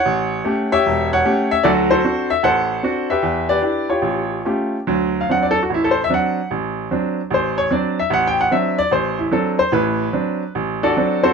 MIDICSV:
0, 0, Header, 1, 2, 480
1, 0, Start_track
1, 0, Tempo, 397088
1, 63, Time_signature, 4, 2, 24, 8
1, 4383, Tempo, 414938
1, 7263, Tempo, 399734
1, 11583, Tempo, 416089
1, 13452, End_track
2, 0, Start_track
2, 0, Title_t, "Upright piano"
2, 0, Program_c, 0, 0
2, 0, Note_on_c, 0, 73, 69
2, 0, Note_on_c, 0, 78, 96
2, 65, Note_on_c, 0, 33, 70
2, 486, Note_off_c, 0, 33, 0
2, 539, Note_on_c, 0, 57, 51
2, 543, Note_on_c, 0, 61, 46
2, 546, Note_on_c, 0, 67, 56
2, 834, Note_off_c, 0, 73, 0
2, 859, Note_off_c, 0, 67, 0
2, 873, Note_on_c, 0, 73, 66
2, 873, Note_on_c, 0, 76, 97
2, 877, Note_on_c, 0, 67, 74
2, 888, Note_off_c, 0, 57, 0
2, 889, Note_off_c, 0, 61, 0
2, 908, Note_off_c, 0, 78, 0
2, 1039, Note_on_c, 0, 28, 74
2, 1324, Note_off_c, 0, 76, 0
2, 1349, Note_off_c, 0, 73, 0
2, 1367, Note_on_c, 0, 73, 67
2, 1367, Note_on_c, 0, 78, 89
2, 1456, Note_off_c, 0, 28, 0
2, 1500, Note_off_c, 0, 67, 0
2, 1511, Note_on_c, 0, 57, 56
2, 1515, Note_on_c, 0, 61, 50
2, 1519, Note_on_c, 0, 67, 60
2, 1829, Note_on_c, 0, 76, 86
2, 1852, Note_off_c, 0, 57, 0
2, 1854, Note_off_c, 0, 61, 0
2, 1856, Note_off_c, 0, 67, 0
2, 1857, Note_off_c, 0, 78, 0
2, 1956, Note_off_c, 0, 73, 0
2, 1976, Note_on_c, 0, 74, 95
2, 1985, Note_on_c, 0, 69, 67
2, 1987, Note_on_c, 0, 38, 79
2, 1988, Note_on_c, 0, 66, 69
2, 1992, Note_on_c, 0, 54, 72
2, 1996, Note_off_c, 0, 76, 0
2, 2051, Note_off_c, 0, 74, 0
2, 2293, Note_off_c, 0, 69, 0
2, 2300, Note_off_c, 0, 66, 0
2, 2303, Note_on_c, 0, 72, 90
2, 2311, Note_on_c, 0, 69, 65
2, 2318, Note_on_c, 0, 66, 59
2, 2408, Note_off_c, 0, 38, 0
2, 2411, Note_off_c, 0, 54, 0
2, 2460, Note_off_c, 0, 66, 0
2, 2467, Note_on_c, 0, 60, 52
2, 2468, Note_on_c, 0, 62, 49
2, 2478, Note_on_c, 0, 66, 59
2, 2754, Note_off_c, 0, 72, 0
2, 2784, Note_on_c, 0, 76, 88
2, 2807, Note_off_c, 0, 60, 0
2, 2807, Note_off_c, 0, 62, 0
2, 2812, Note_off_c, 0, 66, 0
2, 2933, Note_off_c, 0, 76, 0
2, 2937, Note_off_c, 0, 69, 0
2, 2938, Note_on_c, 0, 33, 74
2, 2948, Note_on_c, 0, 78, 94
2, 2955, Note_on_c, 0, 69, 64
2, 2959, Note_on_c, 0, 72, 64
2, 3356, Note_off_c, 0, 33, 0
2, 3421, Note_on_c, 0, 60, 46
2, 3426, Note_on_c, 0, 62, 47
2, 3436, Note_on_c, 0, 66, 59
2, 3748, Note_on_c, 0, 76, 72
2, 3757, Note_on_c, 0, 67, 58
2, 3759, Note_on_c, 0, 71, 54
2, 3761, Note_off_c, 0, 60, 0
2, 3763, Note_off_c, 0, 62, 0
2, 3769, Note_off_c, 0, 66, 0
2, 3770, Note_off_c, 0, 78, 0
2, 3859, Note_off_c, 0, 69, 0
2, 3861, Note_off_c, 0, 72, 0
2, 3899, Note_on_c, 0, 40, 72
2, 4220, Note_off_c, 0, 71, 0
2, 4221, Note_off_c, 0, 67, 0
2, 4221, Note_on_c, 0, 74, 95
2, 4238, Note_on_c, 0, 71, 57
2, 4239, Note_on_c, 0, 67, 50
2, 4242, Note_off_c, 0, 76, 0
2, 4319, Note_off_c, 0, 40, 0
2, 4366, Note_off_c, 0, 67, 0
2, 4371, Note_on_c, 0, 62, 47
2, 4378, Note_on_c, 0, 64, 39
2, 4384, Note_on_c, 0, 67, 51
2, 4662, Note_off_c, 0, 74, 0
2, 4684, Note_off_c, 0, 67, 0
2, 4695, Note_on_c, 0, 73, 64
2, 4696, Note_on_c, 0, 65, 52
2, 4702, Note_on_c, 0, 67, 53
2, 4707, Note_off_c, 0, 62, 0
2, 4710, Note_off_c, 0, 64, 0
2, 4817, Note_off_c, 0, 71, 0
2, 4837, Note_on_c, 0, 33, 62
2, 5274, Note_off_c, 0, 33, 0
2, 5301, Note_off_c, 0, 73, 0
2, 5329, Note_off_c, 0, 65, 0
2, 5335, Note_off_c, 0, 67, 0
2, 5342, Note_on_c, 0, 57, 47
2, 5345, Note_on_c, 0, 61, 46
2, 5347, Note_on_c, 0, 65, 43
2, 5352, Note_on_c, 0, 67, 50
2, 5695, Note_off_c, 0, 57, 0
2, 5696, Note_off_c, 0, 61, 0
2, 5697, Note_off_c, 0, 65, 0
2, 5700, Note_off_c, 0, 67, 0
2, 5824, Note_on_c, 0, 54, 68
2, 5829, Note_on_c, 0, 38, 66
2, 6212, Note_on_c, 0, 77, 65
2, 6244, Note_off_c, 0, 54, 0
2, 6246, Note_off_c, 0, 38, 0
2, 6299, Note_off_c, 0, 77, 0
2, 6311, Note_on_c, 0, 60, 46
2, 6317, Note_on_c, 0, 54, 45
2, 6320, Note_on_c, 0, 62, 55
2, 6336, Note_on_c, 0, 78, 79
2, 6464, Note_on_c, 0, 74, 68
2, 6479, Note_off_c, 0, 78, 0
2, 6560, Note_on_c, 0, 69, 87
2, 6624, Note_off_c, 0, 74, 0
2, 6647, Note_off_c, 0, 60, 0
2, 6650, Note_off_c, 0, 54, 0
2, 6651, Note_off_c, 0, 62, 0
2, 6672, Note_off_c, 0, 69, 0
2, 6697, Note_on_c, 0, 66, 57
2, 6779, Note_on_c, 0, 33, 58
2, 6781, Note_off_c, 0, 66, 0
2, 6832, Note_on_c, 0, 64, 69
2, 6949, Note_on_c, 0, 69, 70
2, 6968, Note_off_c, 0, 64, 0
2, 7027, Note_on_c, 0, 72, 77
2, 7105, Note_off_c, 0, 69, 0
2, 7142, Note_off_c, 0, 72, 0
2, 7176, Note_on_c, 0, 76, 80
2, 7197, Note_off_c, 0, 33, 0
2, 7240, Note_on_c, 0, 60, 46
2, 7245, Note_on_c, 0, 54, 52
2, 7246, Note_on_c, 0, 62, 57
2, 7256, Note_off_c, 0, 76, 0
2, 7292, Note_on_c, 0, 78, 74
2, 7593, Note_off_c, 0, 60, 0
2, 7596, Note_off_c, 0, 54, 0
2, 7596, Note_off_c, 0, 62, 0
2, 7730, Note_off_c, 0, 78, 0
2, 7735, Note_on_c, 0, 33, 67
2, 8159, Note_off_c, 0, 33, 0
2, 8218, Note_on_c, 0, 54, 53
2, 8219, Note_on_c, 0, 60, 45
2, 8232, Note_on_c, 0, 62, 56
2, 8560, Note_off_c, 0, 54, 0
2, 8560, Note_off_c, 0, 60, 0
2, 8567, Note_off_c, 0, 62, 0
2, 8691, Note_on_c, 0, 33, 66
2, 8735, Note_on_c, 0, 72, 74
2, 9019, Note_on_c, 0, 73, 82
2, 9034, Note_off_c, 0, 72, 0
2, 9115, Note_off_c, 0, 33, 0
2, 9171, Note_on_c, 0, 54, 53
2, 9174, Note_on_c, 0, 60, 50
2, 9176, Note_off_c, 0, 73, 0
2, 9183, Note_on_c, 0, 62, 56
2, 9191, Note_on_c, 0, 74, 68
2, 9500, Note_off_c, 0, 74, 0
2, 9515, Note_off_c, 0, 54, 0
2, 9517, Note_off_c, 0, 60, 0
2, 9519, Note_on_c, 0, 76, 78
2, 9521, Note_off_c, 0, 62, 0
2, 9648, Note_on_c, 0, 33, 74
2, 9666, Note_off_c, 0, 76, 0
2, 9688, Note_on_c, 0, 78, 86
2, 9833, Note_off_c, 0, 78, 0
2, 9855, Note_on_c, 0, 79, 83
2, 9996, Note_off_c, 0, 79, 0
2, 10014, Note_on_c, 0, 78, 81
2, 10074, Note_off_c, 0, 33, 0
2, 10138, Note_on_c, 0, 60, 47
2, 10144, Note_on_c, 0, 54, 51
2, 10150, Note_on_c, 0, 76, 77
2, 10151, Note_on_c, 0, 62, 55
2, 10155, Note_off_c, 0, 78, 0
2, 10459, Note_off_c, 0, 76, 0
2, 10468, Note_on_c, 0, 74, 100
2, 10479, Note_off_c, 0, 60, 0
2, 10482, Note_off_c, 0, 54, 0
2, 10485, Note_off_c, 0, 62, 0
2, 10620, Note_off_c, 0, 74, 0
2, 10621, Note_on_c, 0, 33, 67
2, 10636, Note_on_c, 0, 72, 75
2, 10942, Note_off_c, 0, 72, 0
2, 10949, Note_on_c, 0, 64, 51
2, 11038, Note_off_c, 0, 33, 0
2, 11100, Note_off_c, 0, 64, 0
2, 11104, Note_on_c, 0, 54, 52
2, 11110, Note_on_c, 0, 62, 56
2, 11112, Note_on_c, 0, 60, 44
2, 11118, Note_on_c, 0, 69, 62
2, 11424, Note_off_c, 0, 69, 0
2, 11436, Note_on_c, 0, 72, 88
2, 11442, Note_off_c, 0, 54, 0
2, 11445, Note_off_c, 0, 62, 0
2, 11446, Note_off_c, 0, 60, 0
2, 11585, Note_off_c, 0, 72, 0
2, 11590, Note_on_c, 0, 45, 72
2, 11594, Note_on_c, 0, 33, 70
2, 11604, Note_on_c, 0, 71, 78
2, 11996, Note_off_c, 0, 45, 0
2, 11998, Note_off_c, 0, 33, 0
2, 12065, Note_on_c, 0, 54, 51
2, 12066, Note_on_c, 0, 60, 43
2, 12073, Note_on_c, 0, 62, 56
2, 12397, Note_off_c, 0, 54, 0
2, 12397, Note_off_c, 0, 60, 0
2, 12401, Note_off_c, 0, 62, 0
2, 12499, Note_off_c, 0, 71, 0
2, 12549, Note_on_c, 0, 33, 66
2, 12872, Note_on_c, 0, 62, 67
2, 12875, Note_on_c, 0, 69, 69
2, 12875, Note_on_c, 0, 74, 81
2, 12878, Note_on_c, 0, 66, 58
2, 12966, Note_off_c, 0, 33, 0
2, 13024, Note_off_c, 0, 62, 0
2, 13027, Note_on_c, 0, 54, 51
2, 13035, Note_on_c, 0, 60, 48
2, 13041, Note_on_c, 0, 62, 57
2, 13321, Note_off_c, 0, 69, 0
2, 13321, Note_off_c, 0, 74, 0
2, 13322, Note_off_c, 0, 66, 0
2, 13327, Note_off_c, 0, 60, 0
2, 13338, Note_on_c, 0, 69, 66
2, 13338, Note_on_c, 0, 72, 86
2, 13344, Note_on_c, 0, 60, 67
2, 13344, Note_on_c, 0, 66, 69
2, 13366, Note_off_c, 0, 54, 0
2, 13373, Note_off_c, 0, 62, 0
2, 13452, Note_off_c, 0, 60, 0
2, 13452, Note_off_c, 0, 66, 0
2, 13452, Note_off_c, 0, 69, 0
2, 13452, Note_off_c, 0, 72, 0
2, 13452, End_track
0, 0, End_of_file